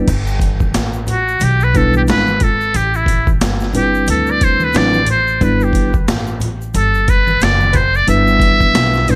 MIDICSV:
0, 0, Header, 1, 5, 480
1, 0, Start_track
1, 0, Key_signature, 1, "major"
1, 0, Tempo, 666667
1, 55, Time_signature, 4, 2, 24, 8
1, 6591, End_track
2, 0, Start_track
2, 0, Title_t, "Muted trumpet"
2, 0, Program_c, 0, 59
2, 794, Note_on_c, 0, 66, 85
2, 1031, Note_on_c, 0, 67, 95
2, 1042, Note_off_c, 0, 66, 0
2, 1176, Note_on_c, 0, 71, 88
2, 1187, Note_off_c, 0, 67, 0
2, 1271, Note_on_c, 0, 69, 94
2, 1282, Note_off_c, 0, 71, 0
2, 1408, Note_off_c, 0, 69, 0
2, 1415, Note_on_c, 0, 67, 88
2, 1455, Note_off_c, 0, 67, 0
2, 1507, Note_on_c, 0, 71, 98
2, 1750, Note_on_c, 0, 69, 93
2, 1761, Note_off_c, 0, 71, 0
2, 1988, Note_on_c, 0, 67, 84
2, 1999, Note_off_c, 0, 69, 0
2, 2130, Note_on_c, 0, 64, 71
2, 2140, Note_off_c, 0, 67, 0
2, 2365, Note_off_c, 0, 64, 0
2, 2709, Note_on_c, 0, 67, 91
2, 2926, Note_off_c, 0, 67, 0
2, 2950, Note_on_c, 0, 69, 89
2, 3099, Note_on_c, 0, 74, 99
2, 3109, Note_off_c, 0, 69, 0
2, 3196, Note_on_c, 0, 72, 97
2, 3206, Note_off_c, 0, 74, 0
2, 3340, Note_on_c, 0, 71, 92
2, 3351, Note_off_c, 0, 72, 0
2, 3435, Note_on_c, 0, 74, 105
2, 3446, Note_off_c, 0, 71, 0
2, 3666, Note_off_c, 0, 74, 0
2, 3673, Note_on_c, 0, 72, 94
2, 3914, Note_on_c, 0, 71, 85
2, 3924, Note_off_c, 0, 72, 0
2, 4057, Note_on_c, 0, 67, 72
2, 4067, Note_off_c, 0, 71, 0
2, 4288, Note_off_c, 0, 67, 0
2, 4870, Note_on_c, 0, 69, 91
2, 5107, Note_on_c, 0, 71, 92
2, 5118, Note_off_c, 0, 69, 0
2, 5348, Note_on_c, 0, 74, 101
2, 5358, Note_off_c, 0, 71, 0
2, 5564, Note_on_c, 0, 71, 70
2, 5575, Note_off_c, 0, 74, 0
2, 5586, Note_on_c, 0, 72, 93
2, 5596, Note_off_c, 0, 71, 0
2, 5731, Note_on_c, 0, 74, 100
2, 5741, Note_off_c, 0, 72, 0
2, 5821, Note_off_c, 0, 74, 0
2, 5828, Note_on_c, 0, 76, 114
2, 6553, Note_on_c, 0, 72, 93
2, 6564, Note_off_c, 0, 76, 0
2, 6591, Note_off_c, 0, 72, 0
2, 6591, End_track
3, 0, Start_track
3, 0, Title_t, "Tine electric piano"
3, 0, Program_c, 1, 4
3, 1253, Note_on_c, 1, 55, 75
3, 1257, Note_on_c, 1, 59, 61
3, 1260, Note_on_c, 1, 62, 65
3, 1264, Note_on_c, 1, 64, 66
3, 1266, Note_on_c, 1, 71, 80
3, 1610, Note_off_c, 1, 55, 0
3, 1612, Note_off_c, 1, 59, 0
3, 1613, Note_off_c, 1, 62, 0
3, 1615, Note_off_c, 1, 64, 0
3, 1617, Note_off_c, 1, 71, 0
3, 2693, Note_on_c, 1, 55, 61
3, 2697, Note_on_c, 1, 60, 53
3, 2700, Note_on_c, 1, 62, 51
3, 2703, Note_on_c, 1, 64, 52
3, 2707, Note_on_c, 1, 71, 65
3, 3376, Note_off_c, 1, 55, 0
3, 3378, Note_off_c, 1, 60, 0
3, 3380, Note_off_c, 1, 62, 0
3, 3381, Note_off_c, 1, 64, 0
3, 3383, Note_off_c, 1, 71, 0
3, 3410, Note_on_c, 1, 54, 73
3, 3415, Note_on_c, 1, 60, 62
3, 3418, Note_on_c, 1, 62, 64
3, 3421, Note_on_c, 1, 64, 62
3, 3423, Note_on_c, 1, 71, 69
3, 3596, Note_off_c, 1, 54, 0
3, 3598, Note_off_c, 1, 60, 0
3, 3599, Note_off_c, 1, 62, 0
3, 3601, Note_off_c, 1, 64, 0
3, 3602, Note_off_c, 1, 71, 0
3, 3892, Note_on_c, 1, 55, 70
3, 3894, Note_on_c, 1, 59, 67
3, 3897, Note_on_c, 1, 62, 65
3, 3901, Note_on_c, 1, 64, 67
3, 3903, Note_on_c, 1, 71, 82
3, 4249, Note_off_c, 1, 55, 0
3, 4251, Note_off_c, 1, 59, 0
3, 4252, Note_off_c, 1, 62, 0
3, 4254, Note_off_c, 1, 64, 0
3, 4255, Note_off_c, 1, 71, 0
3, 5811, Note_on_c, 1, 55, 63
3, 5814, Note_on_c, 1, 59, 62
3, 5816, Note_on_c, 1, 62, 60
3, 5821, Note_on_c, 1, 64, 59
3, 5822, Note_on_c, 1, 71, 70
3, 6495, Note_off_c, 1, 55, 0
3, 6497, Note_off_c, 1, 59, 0
3, 6498, Note_off_c, 1, 62, 0
3, 6500, Note_off_c, 1, 64, 0
3, 6501, Note_off_c, 1, 71, 0
3, 6532, Note_on_c, 1, 55, 69
3, 6535, Note_on_c, 1, 59, 61
3, 6537, Note_on_c, 1, 62, 63
3, 6542, Note_on_c, 1, 64, 62
3, 6545, Note_on_c, 1, 71, 77
3, 6591, Note_off_c, 1, 55, 0
3, 6591, Note_off_c, 1, 59, 0
3, 6591, Note_off_c, 1, 62, 0
3, 6591, Note_off_c, 1, 64, 0
3, 6591, Note_off_c, 1, 71, 0
3, 6591, End_track
4, 0, Start_track
4, 0, Title_t, "Upright bass"
4, 0, Program_c, 2, 32
4, 55, Note_on_c, 2, 31, 104
4, 512, Note_off_c, 2, 31, 0
4, 536, Note_on_c, 2, 33, 79
4, 992, Note_off_c, 2, 33, 0
4, 1016, Note_on_c, 2, 35, 93
4, 1472, Note_off_c, 2, 35, 0
4, 1495, Note_on_c, 2, 32, 86
4, 1951, Note_off_c, 2, 32, 0
4, 1976, Note_on_c, 2, 33, 97
4, 2432, Note_off_c, 2, 33, 0
4, 2456, Note_on_c, 2, 31, 82
4, 2912, Note_off_c, 2, 31, 0
4, 2936, Note_on_c, 2, 38, 87
4, 3392, Note_off_c, 2, 38, 0
4, 3416, Note_on_c, 2, 33, 87
4, 3872, Note_off_c, 2, 33, 0
4, 3896, Note_on_c, 2, 31, 106
4, 4352, Note_off_c, 2, 31, 0
4, 4378, Note_on_c, 2, 33, 83
4, 4833, Note_off_c, 2, 33, 0
4, 4856, Note_on_c, 2, 31, 97
4, 5312, Note_off_c, 2, 31, 0
4, 5338, Note_on_c, 2, 30, 86
4, 5793, Note_off_c, 2, 30, 0
4, 5816, Note_on_c, 2, 31, 114
4, 6272, Note_off_c, 2, 31, 0
4, 6295, Note_on_c, 2, 35, 90
4, 6591, Note_off_c, 2, 35, 0
4, 6591, End_track
5, 0, Start_track
5, 0, Title_t, "Drums"
5, 55, Note_on_c, 9, 36, 103
5, 55, Note_on_c, 9, 42, 76
5, 55, Note_on_c, 9, 49, 88
5, 59, Note_on_c, 9, 82, 66
5, 127, Note_off_c, 9, 36, 0
5, 127, Note_off_c, 9, 42, 0
5, 127, Note_off_c, 9, 49, 0
5, 131, Note_off_c, 9, 82, 0
5, 195, Note_on_c, 9, 82, 51
5, 267, Note_off_c, 9, 82, 0
5, 285, Note_on_c, 9, 36, 75
5, 294, Note_on_c, 9, 63, 44
5, 294, Note_on_c, 9, 82, 40
5, 299, Note_on_c, 9, 42, 78
5, 357, Note_off_c, 9, 36, 0
5, 366, Note_off_c, 9, 63, 0
5, 366, Note_off_c, 9, 82, 0
5, 371, Note_off_c, 9, 42, 0
5, 433, Note_on_c, 9, 63, 63
5, 433, Note_on_c, 9, 82, 44
5, 435, Note_on_c, 9, 36, 74
5, 505, Note_off_c, 9, 63, 0
5, 505, Note_off_c, 9, 82, 0
5, 507, Note_off_c, 9, 36, 0
5, 534, Note_on_c, 9, 82, 67
5, 535, Note_on_c, 9, 42, 90
5, 537, Note_on_c, 9, 38, 98
5, 606, Note_off_c, 9, 82, 0
5, 607, Note_off_c, 9, 42, 0
5, 609, Note_off_c, 9, 38, 0
5, 671, Note_on_c, 9, 82, 42
5, 743, Note_off_c, 9, 82, 0
5, 770, Note_on_c, 9, 64, 68
5, 770, Note_on_c, 9, 82, 49
5, 777, Note_on_c, 9, 42, 64
5, 842, Note_off_c, 9, 64, 0
5, 842, Note_off_c, 9, 82, 0
5, 849, Note_off_c, 9, 42, 0
5, 922, Note_on_c, 9, 82, 47
5, 994, Note_off_c, 9, 82, 0
5, 1006, Note_on_c, 9, 63, 39
5, 1006, Note_on_c, 9, 82, 51
5, 1015, Note_on_c, 9, 42, 93
5, 1078, Note_off_c, 9, 63, 0
5, 1078, Note_off_c, 9, 82, 0
5, 1087, Note_off_c, 9, 42, 0
5, 1155, Note_on_c, 9, 82, 42
5, 1227, Note_off_c, 9, 82, 0
5, 1257, Note_on_c, 9, 42, 64
5, 1257, Note_on_c, 9, 82, 44
5, 1258, Note_on_c, 9, 36, 88
5, 1329, Note_off_c, 9, 42, 0
5, 1329, Note_off_c, 9, 82, 0
5, 1330, Note_off_c, 9, 36, 0
5, 1394, Note_on_c, 9, 63, 71
5, 1394, Note_on_c, 9, 82, 56
5, 1466, Note_off_c, 9, 63, 0
5, 1466, Note_off_c, 9, 82, 0
5, 1490, Note_on_c, 9, 82, 65
5, 1499, Note_on_c, 9, 42, 72
5, 1509, Note_on_c, 9, 38, 103
5, 1562, Note_off_c, 9, 82, 0
5, 1571, Note_off_c, 9, 42, 0
5, 1581, Note_off_c, 9, 38, 0
5, 1635, Note_on_c, 9, 63, 56
5, 1635, Note_on_c, 9, 82, 39
5, 1707, Note_off_c, 9, 63, 0
5, 1707, Note_off_c, 9, 82, 0
5, 1729, Note_on_c, 9, 42, 73
5, 1730, Note_on_c, 9, 64, 69
5, 1730, Note_on_c, 9, 82, 49
5, 1735, Note_on_c, 9, 36, 90
5, 1801, Note_off_c, 9, 42, 0
5, 1802, Note_off_c, 9, 64, 0
5, 1802, Note_off_c, 9, 82, 0
5, 1807, Note_off_c, 9, 36, 0
5, 1878, Note_on_c, 9, 82, 38
5, 1950, Note_off_c, 9, 82, 0
5, 1975, Note_on_c, 9, 42, 77
5, 1983, Note_on_c, 9, 82, 61
5, 2047, Note_off_c, 9, 42, 0
5, 2055, Note_off_c, 9, 82, 0
5, 2117, Note_on_c, 9, 82, 53
5, 2189, Note_off_c, 9, 82, 0
5, 2205, Note_on_c, 9, 36, 74
5, 2217, Note_on_c, 9, 63, 45
5, 2217, Note_on_c, 9, 82, 41
5, 2219, Note_on_c, 9, 42, 83
5, 2277, Note_off_c, 9, 36, 0
5, 2289, Note_off_c, 9, 63, 0
5, 2289, Note_off_c, 9, 82, 0
5, 2291, Note_off_c, 9, 42, 0
5, 2355, Note_on_c, 9, 36, 79
5, 2357, Note_on_c, 9, 63, 63
5, 2357, Note_on_c, 9, 82, 42
5, 2427, Note_off_c, 9, 36, 0
5, 2429, Note_off_c, 9, 63, 0
5, 2429, Note_off_c, 9, 82, 0
5, 2454, Note_on_c, 9, 82, 66
5, 2457, Note_on_c, 9, 42, 90
5, 2458, Note_on_c, 9, 38, 109
5, 2526, Note_off_c, 9, 82, 0
5, 2529, Note_off_c, 9, 42, 0
5, 2530, Note_off_c, 9, 38, 0
5, 2593, Note_on_c, 9, 82, 44
5, 2609, Note_on_c, 9, 38, 39
5, 2665, Note_off_c, 9, 82, 0
5, 2681, Note_off_c, 9, 38, 0
5, 2688, Note_on_c, 9, 64, 70
5, 2688, Note_on_c, 9, 82, 48
5, 2697, Note_on_c, 9, 42, 74
5, 2760, Note_off_c, 9, 64, 0
5, 2760, Note_off_c, 9, 82, 0
5, 2769, Note_off_c, 9, 42, 0
5, 2840, Note_on_c, 9, 82, 51
5, 2912, Note_off_c, 9, 82, 0
5, 2928, Note_on_c, 9, 63, 39
5, 2928, Note_on_c, 9, 82, 52
5, 2936, Note_on_c, 9, 42, 95
5, 3000, Note_off_c, 9, 63, 0
5, 3000, Note_off_c, 9, 82, 0
5, 3008, Note_off_c, 9, 42, 0
5, 3072, Note_on_c, 9, 82, 45
5, 3144, Note_off_c, 9, 82, 0
5, 3175, Note_on_c, 9, 82, 46
5, 3176, Note_on_c, 9, 42, 69
5, 3178, Note_on_c, 9, 36, 93
5, 3247, Note_off_c, 9, 82, 0
5, 3248, Note_off_c, 9, 42, 0
5, 3250, Note_off_c, 9, 36, 0
5, 3313, Note_on_c, 9, 63, 73
5, 3313, Note_on_c, 9, 82, 54
5, 3385, Note_off_c, 9, 63, 0
5, 3385, Note_off_c, 9, 82, 0
5, 3404, Note_on_c, 9, 82, 65
5, 3417, Note_on_c, 9, 42, 72
5, 3426, Note_on_c, 9, 38, 100
5, 3476, Note_off_c, 9, 82, 0
5, 3489, Note_off_c, 9, 42, 0
5, 3498, Note_off_c, 9, 38, 0
5, 3554, Note_on_c, 9, 63, 61
5, 3554, Note_on_c, 9, 82, 41
5, 3626, Note_off_c, 9, 63, 0
5, 3626, Note_off_c, 9, 82, 0
5, 3647, Note_on_c, 9, 42, 72
5, 3648, Note_on_c, 9, 64, 69
5, 3648, Note_on_c, 9, 82, 49
5, 3719, Note_off_c, 9, 42, 0
5, 3720, Note_off_c, 9, 64, 0
5, 3720, Note_off_c, 9, 82, 0
5, 3797, Note_on_c, 9, 82, 37
5, 3869, Note_off_c, 9, 82, 0
5, 3896, Note_on_c, 9, 36, 107
5, 3897, Note_on_c, 9, 42, 72
5, 3899, Note_on_c, 9, 82, 64
5, 3968, Note_off_c, 9, 36, 0
5, 3969, Note_off_c, 9, 42, 0
5, 3971, Note_off_c, 9, 82, 0
5, 4035, Note_on_c, 9, 82, 56
5, 4107, Note_off_c, 9, 82, 0
5, 4126, Note_on_c, 9, 36, 85
5, 4135, Note_on_c, 9, 63, 42
5, 4135, Note_on_c, 9, 82, 43
5, 4140, Note_on_c, 9, 42, 84
5, 4198, Note_off_c, 9, 36, 0
5, 4207, Note_off_c, 9, 63, 0
5, 4207, Note_off_c, 9, 82, 0
5, 4212, Note_off_c, 9, 42, 0
5, 4275, Note_on_c, 9, 63, 64
5, 4275, Note_on_c, 9, 82, 43
5, 4276, Note_on_c, 9, 36, 82
5, 4347, Note_off_c, 9, 63, 0
5, 4347, Note_off_c, 9, 82, 0
5, 4348, Note_off_c, 9, 36, 0
5, 4377, Note_on_c, 9, 82, 66
5, 4378, Note_on_c, 9, 42, 101
5, 4380, Note_on_c, 9, 38, 107
5, 4449, Note_off_c, 9, 82, 0
5, 4450, Note_off_c, 9, 42, 0
5, 4452, Note_off_c, 9, 38, 0
5, 4513, Note_on_c, 9, 82, 43
5, 4585, Note_off_c, 9, 82, 0
5, 4610, Note_on_c, 9, 64, 66
5, 4610, Note_on_c, 9, 82, 49
5, 4618, Note_on_c, 9, 42, 68
5, 4682, Note_off_c, 9, 64, 0
5, 4682, Note_off_c, 9, 82, 0
5, 4690, Note_off_c, 9, 42, 0
5, 4763, Note_on_c, 9, 82, 46
5, 4835, Note_off_c, 9, 82, 0
5, 4851, Note_on_c, 9, 63, 40
5, 4851, Note_on_c, 9, 82, 53
5, 4857, Note_on_c, 9, 42, 100
5, 4923, Note_off_c, 9, 63, 0
5, 4923, Note_off_c, 9, 82, 0
5, 4929, Note_off_c, 9, 42, 0
5, 4999, Note_on_c, 9, 82, 45
5, 5071, Note_off_c, 9, 82, 0
5, 5097, Note_on_c, 9, 42, 67
5, 5099, Note_on_c, 9, 36, 89
5, 5101, Note_on_c, 9, 82, 46
5, 5169, Note_off_c, 9, 42, 0
5, 5171, Note_off_c, 9, 36, 0
5, 5173, Note_off_c, 9, 82, 0
5, 5236, Note_on_c, 9, 63, 73
5, 5236, Note_on_c, 9, 82, 51
5, 5308, Note_off_c, 9, 63, 0
5, 5308, Note_off_c, 9, 82, 0
5, 5329, Note_on_c, 9, 82, 68
5, 5340, Note_on_c, 9, 42, 75
5, 5350, Note_on_c, 9, 38, 101
5, 5401, Note_off_c, 9, 82, 0
5, 5412, Note_off_c, 9, 42, 0
5, 5422, Note_off_c, 9, 38, 0
5, 5476, Note_on_c, 9, 63, 56
5, 5476, Note_on_c, 9, 82, 39
5, 5548, Note_off_c, 9, 63, 0
5, 5548, Note_off_c, 9, 82, 0
5, 5568, Note_on_c, 9, 42, 73
5, 5570, Note_on_c, 9, 64, 71
5, 5570, Note_on_c, 9, 82, 46
5, 5576, Note_on_c, 9, 36, 101
5, 5640, Note_off_c, 9, 42, 0
5, 5642, Note_off_c, 9, 64, 0
5, 5642, Note_off_c, 9, 82, 0
5, 5648, Note_off_c, 9, 36, 0
5, 5719, Note_on_c, 9, 82, 38
5, 5791, Note_off_c, 9, 82, 0
5, 5815, Note_on_c, 9, 42, 75
5, 5821, Note_on_c, 9, 82, 63
5, 5887, Note_off_c, 9, 42, 0
5, 5893, Note_off_c, 9, 82, 0
5, 5957, Note_on_c, 9, 82, 50
5, 6029, Note_off_c, 9, 82, 0
5, 6046, Note_on_c, 9, 36, 84
5, 6057, Note_on_c, 9, 63, 45
5, 6057, Note_on_c, 9, 82, 45
5, 6059, Note_on_c, 9, 42, 83
5, 6118, Note_off_c, 9, 36, 0
5, 6129, Note_off_c, 9, 63, 0
5, 6129, Note_off_c, 9, 82, 0
5, 6131, Note_off_c, 9, 42, 0
5, 6196, Note_on_c, 9, 36, 84
5, 6196, Note_on_c, 9, 63, 63
5, 6196, Note_on_c, 9, 82, 44
5, 6268, Note_off_c, 9, 36, 0
5, 6268, Note_off_c, 9, 63, 0
5, 6268, Note_off_c, 9, 82, 0
5, 6298, Note_on_c, 9, 82, 64
5, 6299, Note_on_c, 9, 42, 97
5, 6301, Note_on_c, 9, 38, 109
5, 6370, Note_off_c, 9, 82, 0
5, 6371, Note_off_c, 9, 42, 0
5, 6373, Note_off_c, 9, 38, 0
5, 6434, Note_on_c, 9, 82, 43
5, 6449, Note_on_c, 9, 38, 42
5, 6506, Note_off_c, 9, 82, 0
5, 6521, Note_off_c, 9, 38, 0
5, 6533, Note_on_c, 9, 64, 71
5, 6533, Note_on_c, 9, 82, 52
5, 6538, Note_on_c, 9, 42, 70
5, 6591, Note_off_c, 9, 42, 0
5, 6591, Note_off_c, 9, 64, 0
5, 6591, Note_off_c, 9, 82, 0
5, 6591, End_track
0, 0, End_of_file